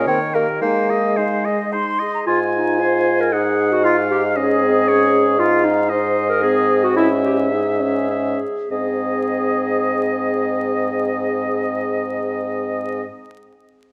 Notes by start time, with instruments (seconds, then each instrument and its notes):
0.07 french horn D#3, bassoon C4, clarinet A#4, oboe C#5, flute G5
0.34 bassoon A#3, clarinet G4, oboe A#4, flute D#5
0.61 french horn G#3, bassoon A#3, clarinet D#4, oboe C5, flute G#5
0.90 clarinet G#4, oboe D#5, flute D#5
1.17 bassoon G#3, clarinet D#4, oboe C5, flute F5
1.45 clarinet G#4, oboe D#5, flute D#5
1.72 clarinet D#4, oboe C5, flute C6
1.99 clarinet G#4, oboe D#5
2.14 flute A#5
2.27 bassoon G#2, clarinet F4, french horn F4, oboe G#5
2.53 clarinet D#4
2.79 clarinet C5
3.21 clarinet A#4
3.32 french horn D#4, clarinet G#4, oboe F#5
3.72 clarinet F#4
3.84 clarinet F4, oboe F5
4.11 clarinet G4
4.36 french horn C#4, clarinet G#4, oboe D#5
4.62 french horn C4
4.88 french horn C#4, oboe C#5
5.39 bassoon G#2, french horn D#4, clarinet F4, oboe F5
5.65 clarinet D#4
5.89 french horn D#4, clarinet C5, oboe D#5
6.29 clarinet A#4
6.42 french horn C4, clarinet G#4
6.84 clarinet F#4
6.96 french horn C#4, clarinet E4, oboe E5
7.25 clarinet G4
7.52 french horn D#4, clarinet G#4
7.80 french horn C#4
8.10 french horn C#4, oboe E5
8.71 bassoon G#2, french horn C4, clarinet G#4, oboe D#5